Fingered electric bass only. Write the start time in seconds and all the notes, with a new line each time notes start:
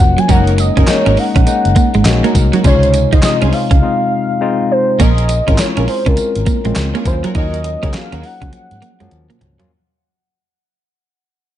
0.00 F1
0.29 F#1
0.77 F#1
1.07 G#1
1.36 A#1
1.65 F#1
1.95 G#1
2.06 A#1
2.35 C2
2.65 C#2
3.13 C#2
3.23 muted fingered electric bass stroke
3.42 C2
3.71 C#2
5.00 A#1
5.48 G#1
5.59 muted fingered electric bass stroke
5.77 A#1
6.06 C#2
6.36 G#1
6.65 A#1
6.76 C#2
7.06 D#2
7.35 D#2
7.83 C#2
7.94 muted fingered electric bass stroke
8.12 D#2
8.42 C#2
8.71 G#2
9.01 F#2
9.12 D#2
9.41 C#2